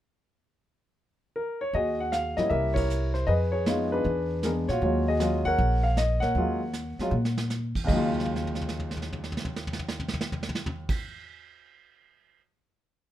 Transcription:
1.36 A#4
1.61 C#5
1.73 D#2 F#4 G#4 D#5, brush sweep, kick
2.00 F#5
2.12 F5, snare, hi-hat pedal
2.37 G2 G3 A#3 C#4 E4 D#5, snare
2.50 C2 G4 A#4 E5, brush sweep, kick
2.74 E4 A#4 C#5, kick, ride
2.90 hi-hat pedal
3.14 C5, snare
3.27 F2 G#4 B4 D#5, brush sweep, kick
3.52 G#4 C#5
3.66 G#3 B3 D#4 F4, snare, hi-hat pedal
3.92 D4 G#4 B4
4.04 E2, brush sweep, kick
4.43 G#3 B3 D4 G#4 A#4, snare, hi-hat pedal
4.68 A#2 F4 F#4 C#5, snare
4.81 D#2 F#3 G#3 C#4 F4, brush sweep, kick
5.08 F#4 G#4 D#5
5.20 F#3 G#3 C#4 F4, snare, hi-hat pedal
5.45 A#4 C#5 F#5, kick
5.58 A#1, brush sweep, kick
5.83 F5
5.97 D#5, snare, hi-hat pedal
6.20 A#2 A#4 C#5 F#5, snare
6.35 D#2 F#3 G#3 C#4 F4, brush sweep, kick
6.73 snare, hi-hat pedal
6.99 F#3 G#3 C#4 F4, muted upright bass stroke, snare
7.11 A#2
7.25 snare
7.38 snare
7.50 snare, hi-hat pedal
7.75 E2, kick, crash
7.84 D#2 C#3 D#5
7.88 D#2 F#3, kick, crash
7.93 G#3 F4
8.14 floor tom
8.20 snare
8.25 floor tom
8.36 snare
8.47 floor tom
8.55 snare
8.61 floor tom
8.69 snare
8.80 floor tom
8.91 snare
8.97 floor tom
9.02 snare
9.12 floor tom
9.24 snare
9.32 floor tom
9.37 snare
9.45 floor tom
9.56 snare
9.67 floor tom
9.73 snare
9.79 floor tom
9.88 snare
10.00 floor tom
10.08 snare
10.14 floor tom
10.21 snare
10.32 floor tom
10.43 snare
10.49 floor tom
10.55 snare
10.66 floor tom
10.89 kick, crash

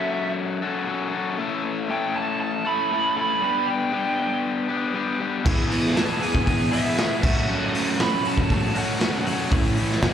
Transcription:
Already playing: F#3 C#4 F#4 A4 E5
0.62 C#4 F#4 A4
0.87 F#3 C#4 F#4 A4
1.13 C#4 F#4 A4
1.38 A3 C#4 E4 A4
1.89 A3 C#4 E4 A4 G5
2.16 A5
2.40 A5
2.65 C#4 E4 A4 B5
2.91 A3 C#4 E4 A4
3.17 C#4 E4 A4 B5
3.42 G3 B3 D4 G4 B5
3.67 G5
3.92 G3 B3 D4 G4
4.68 B3 D4 G4
4.94 G3 B3 D4 G4
5.19 B3 D4 G4
5.45 E3 G#3 B3 E4 G#4, kick, crash
5.70 E3 G#3 B3 E4 G#4, open hi-hat
5.85 snare
5.95 E2 E3 G#3 B3 E4 G#4 A5, snare, open hi-hat
6.20 E3 G#3 B3 E4 G#4 G#5, open hi-hat
6.35 kick
6.46 E3 G#3 B3 E4 G#4 G#5, kick, open hi-hat
6.71 E3 G#3 B3 E4 G#4 E5, open hi-hat
6.97 E1 E3 G#3 B3 E4 G#4, snare, open hi-hat
7.22 F#3 A3 C#4 F#4 E5, kick, crash
7.48 F#3 A3 C#4 F#4
7.73 F#1 F#3 A3 C#4 F#4, open hi-hat
7.98 F#2 F#3 A3 C#4 F#4 B5, snare, open hi-hat
8.24 F#3 A3 C#4 F#4 A5, open hi-hat
8.38 kick
8.50 F#3 A3 C#4 F#4 A5, kick, open hi-hat
8.74 C#2 F#3 A3 C#4 F#4 F#5, open hi-hat
8.99 E2 F#3 A3 C#4 F#4, snare, open hi-hat
9.14 snare
9.25 F#3 A3 C#4 F#4 F#5, open hi-hat
9.50 A2 E3 A3 C#4 E4, kick, open hi-hat
9.77 A2 E3 A3 C#4 E4, open hi-hat
9.91 snare
10.01 A2 E3 A3 C#4 E4 F#5, snare, open hi-hat

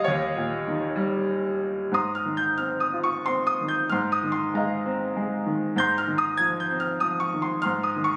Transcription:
Already playing: D#2 A#2 D#3 G3 G4 C#5 D#5 F5
0.04 D#2 C#5
0.09 G4
0.37 A#2
0.67 D#3
0.96 G3
1.91 G#2 A#5 C6 D#6
2.15 F6
2.25 D#3
2.37 G6
2.58 C4 F6
2.80 D#6
2.93 F4
3.04 C#6
3.26 C4 C6
3.47 D#6
3.61 D#3
3.68 G6
3.90 G#2 C6 F6
4.12 D#6
4.23 D#3
4.32 C6
4.54 G#3 D#5 F5 A#5
4.86 C4
5.16 G#3
5.46 D#3
5.76 G#2 A#5 C6 G6
5.98 F6
6.07 D#3
6.18 D#6
6.37 F3 G#6
6.60 G6
6.71 C4
6.80 F6
7.00 F3 D#6
7.20 C#6
7.34 D#3
7.42 C6
7.62 G#2 C6 F6
7.83 D#6
7.96 D#3
8.04 C#6

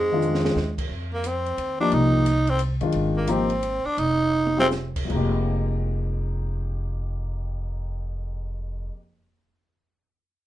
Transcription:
Already playing: F2 G#2 G#3
0.12 D#3 G#3 D4 F4
0.22 hi-hat pedal
0.34 snare
0.45 snare
0.56 D#2, snare
0.78 kick, crash
0.89 F2
1.14 A#3
1.24 C4, hi-hat pedal, ride
1.46 ride
1.57 D#2, ride
1.80 F3 A#3 D4 D#4 G4
1.92 C2 D#4, ride
2.26 hi-hat pedal, ride
2.47 C4, ride
2.59 hi-hat pedal, ride
2.81 F#2 D#3 G#3 D4 F4, ride
2.92 G#1, ride
3.17 A#3
3.27 F3 A#3 C4 D#4 G4, hi-hat pedal, ride
3.50 ride
3.63 ride
3.85 D4, muted upright bass stroke
3.97 F1 D#4, ride
4.47 high tom
4.57 G3 C4 F4 G#4, mid tom
4.71 snare, hi-hat pedal
4.96 kick, crash
5.05 F2 F3
5.09 F1 G#3 A#3, kick, crash
5.14 D#4 G4

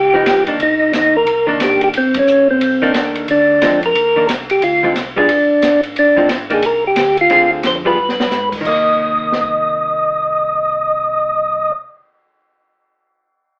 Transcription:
Already playing: C#2 G4
0.14 F3 B3 D#4
0.25 B1, snare, hi-hat pedal, ride
0.47 D#3 A#3 D4, kick, ride
0.59 C2 D#4, ride
0.92 D#2, snare, hi-hat pedal, ride
0.96 D#4
1.17 A#4
1.25 C2, ride
1.47 D#3 A#3 D4
1.60 G#1, snare, hi-hat pedal, ride
1.64 G4
1.81 G4, ride
1.93 G1, ride
1.98 C4
2.14 kick, ride
2.19 C#4
2.27 A#1, hi-hat pedal
2.51 C4
2.60 C2, ride
2.82 D#3 A#3 D4
2.94 D#2, snare, hi-hat pedal, ride
3.15 ride
3.28 D2 D4, ride
3.61 F2 D3 G#3 C4 F4, snare, hi-hat pedal, ride
3.83 A#4, ride
3.95 D#2, ride
4.16 D#3 A#3 D4
4.27 C2, snare, hi-hat pedal, ride
4.50 G4, ride
4.61 D2 F4, ride
4.83 D3 G#3 C4 F4
4.95 C2, snare, hi-hat pedal, ride
5.16 G3 B3 D4 F4 G#4
5.28 G1, ride
5.62 G#1, snare, hi-hat pedal, ride
5.83 ride
5.95 F1 D4, ride
6.16 D3 G#3 C4 F4
6.29 G#1, snare, hi-hat pedal, ride
6.50 D#3 A#3 D4 G#4, ride
6.62 C2 A#4, ride
6.87 G4
6.96 D2, snare, hi-hat pedal, ride
7.17 F4, ride
7.30 D2 D3 C4 F4 G#4, ride
7.63 F2 C5, snare, hi-hat pedal, ride
7.85 G3 B3 F4 G#4 B4
7.98 G2
8.09 snare
8.20 snare
8.31 G#2, snare, hi-hat pedal
8.52 kick, crash
8.61 C2 D#3
8.65 A#3 D#5, kick, crash
9.32 snare
9.43 kick

